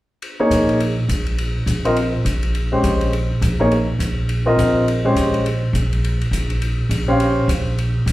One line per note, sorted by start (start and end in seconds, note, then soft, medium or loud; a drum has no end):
0.22 ride soft
0.40 0.78 A#3 soft
0.40 0.78 D#4 medium
0.40 0.78 G#4 soft
0.40 0.78 C#5 medium
0.50 0.96 A#1 medium
0.50 hi-hat pedal soft
0.50 ride medium
0.69 ride soft
0.80 ride soft
1.09 1.54 A#1 medium
1.09 hi-hat pedal soft
1.09 ride medium
1.26 ride soft
1.38 ride soft
1.66 2.12 A#1 medium
1.66 hi-hat pedal soft
1.66 ride medium
1.85 1.95 C4 soft
1.85 1.95 F4 soft
1.85 1.96 A#4 soft
1.85 1.96 D#5 medium
1.85 ride soft
1.96 ride soft
2.25 2.71 A#1 medium
2.25 hi-hat pedal soft
2.25 ride medium
2.43 ride soft
2.55 ride soft
2.72 3.10 G#3 soft
2.72 3.10 C#4 soft
2.72 3.11 G4 soft
2.72 3.11 C5 medium
2.83 3.29 A#1 medium
2.83 hi-hat pedal soft
2.83 ride soft
3.01 ride soft
3.13 ride soft
3.41 3.87 A#1 medium
3.41 hi-hat pedal soft
3.41 ride soft
3.60 3.70 A#3 medium
3.60 3.70 D#4 soft
3.60 3.70 G#4 soft
3.60 3.71 C#5 medium
3.71 ride soft
3.99 4.45 A#1 medium
3.99 hi-hat pedal medium
3.99 ride medium
4.29 ride soft
4.46 4.84 C4 medium
4.46 4.85 F4 medium
4.46 4.85 A#4 soft
4.46 4.85 D#5 medium
4.57 5.03 A#1 medium
4.57 hi-hat pedal soft
4.57 ride medium
4.88 ride soft
5.05 5.43 G#3 soft
5.05 5.43 C#4 soft
5.05 5.43 G4 soft
5.05 5.43 C5 medium
5.15 5.61 A#1 medium
5.15 hi-hat pedal soft
5.15 ride medium
5.34 ride soft
5.46 ride soft
5.73 6.19 A#1 medium
5.73 hi-hat pedal soft
5.73 ride soft
5.93 ride soft
6.04 ride soft
6.21 ride soft
6.31 6.77 A#1 medium
6.31 hi-hat pedal soft
6.31 ride soft
6.50 ride soft
6.62 ride soft
6.89 7.35 A#1 medium
6.89 hi-hat pedal soft
6.89 ride soft
7.08 7.46 C#4 medium
7.08 7.47 G4 medium
7.08 7.47 C5 medium
7.08 7.47 F5 medium
7.20 ride soft
7.48 7.94 A#1 medium
7.48 hi-hat pedal soft
7.48 ride medium
7.78 ride soft
8.06 8.12 A#1 medium
8.06 hi-hat pedal medium
8.06 ride medium